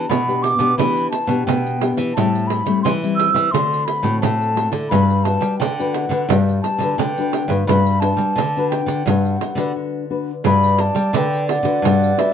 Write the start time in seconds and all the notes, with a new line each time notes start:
Already playing: A5
0.09 B2 B5, pandeiro
0.27 B3 D4 G4, pandeiro
0.43 D6, pandeiro
0.59 B2 B3 D4 G4, pandeiro
0.78 E3 B3 D4 G4 B5, pandeiro
0.97 pandeiro
1.11 A5, pandeiro
1.27 B2 B3 D4 G4, pandeiro
1.46 B2 G5, pandeiro
1.66 pandeiro
1.81 B3 D4 G4, pandeiro
1.97 E3, pandeiro
2.14 A2 G3 C4 E4 A5, pandeiro
2.35 pandeiro
2.47 B5, pandeiro
2.66 G3 A3 C4 E4, pandeiro
2.83 E3 C6, pandeiro
3.03 G3 C4 E4, pandeiro
3.16 E6
3.20 pandeiro
3.34 E3, pandeiro
3.52 D3 A3 C4 F#4 C6, pandeiro
3.73 pandeiro
3.85 B5, pandeiro
4.03 A2 A3 C4 F#4, pandeiro
4.21 A2 A5, pandeiro
4.41 pandeiro
4.55 A3 C4 F#4, pandeiro
4.72 D3, pandeiro
4.89 G2 G3 D4 F#4 B4 B5, pandeiro
5.10 pandeiro
5.24 D4 F#4 B4 A5, pandeiro
5.41 G3, pandeiro
5.59 D3 G5, pandeiro
5.79 D4 F#4 B4, pandeiro
5.93 F#5, pandeiro
6.09 D3 D4 F#4 B4, pandeiro
6.29 G2 G3 D4 F#4 B4, pandeiro
6.49 pandeiro
6.62 A5, pandeiro
6.78 D3 D4 F#4 B4, pandeiro
6.98 D3 G5, pandeiro
7.18 D4 F#4 B4, pandeiro
7.33 pandeiro
7.48 G2 D4 F#4 B4, pandeiro
7.67 G2 G3 D4 F#4 B4 B5, pandeiro
7.86 pandeiro
8.00 D4 F#4 B4 A5, pandeiro
8.17 G3, pandeiro
8.36 D3, pandeiro
8.57 D4 F#4 B4, pandeiro
8.70 G5, pandeiro
8.86 D3, pandeiro
9.06 G2 G3 D4 F#4 B4 F#5, pandeiro
9.25 pandeiro
9.41 pandeiro
9.55 D3 D4 F#4 B4, pandeiro
9.76 D3
10.10 D4 F#4 B4
10.44 G2 G3 D4 F#4 B4 D5 B5, pandeiro
10.63 pandeiro
10.78 A5, pandeiro
10.95 G3, pandeiro
11.13 D3 D4 B4 G5, pandeiro
11.33 pandeiro
11.49 F#5, pandeiro
11.63 D3 D4 F#4 B4, pandeiro
11.82 G2 G3, pandeiro
12.03 pandeiro
12.17 D4 F#4 B4 E5, pandeiro